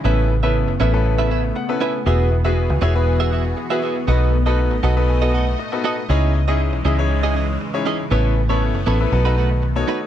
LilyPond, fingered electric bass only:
\new Staff \with { instrumentName = "Fingered electric bass" } { \clef bass \time 4/4 \key e \major \tempo 4 = 119 a,,4~ a,,16 fis,,16 a,,2 r8 | e,,4~ e,,16 cis,16 e,,2 r8 | b,,4~ b,,16 a,,16 b,,2 r8 | cis,4~ cis,16 b,,16 cis,2 r8 |
a,,4~ a,,16 fis,,16 a,,8 b,,2 | }